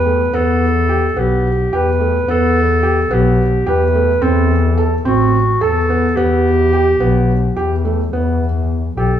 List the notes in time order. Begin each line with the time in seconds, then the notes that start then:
Already playing: E2 B4
0.06 A3
0.33 E2 B3 A4
0.89 G4
1.16 B1 B3 G4
1.72 E2 G4 B4
2.00 A3
2.27 E2 B3 A4
2.83 G4
3.10 B1 B3 G4
3.66 E2 G4 B4
3.95 A3
4.22 E2 C4 A4
4.77 A4
5.05 A1 C4 F#4
5.61 E2 A4
5.90 B3
6.16 E2 B3 G4
6.73 G4
7.00 B1 B3
7.56 E2 G4
7.85 A3
8.12 E2 B3
8.96 B1 G4 A4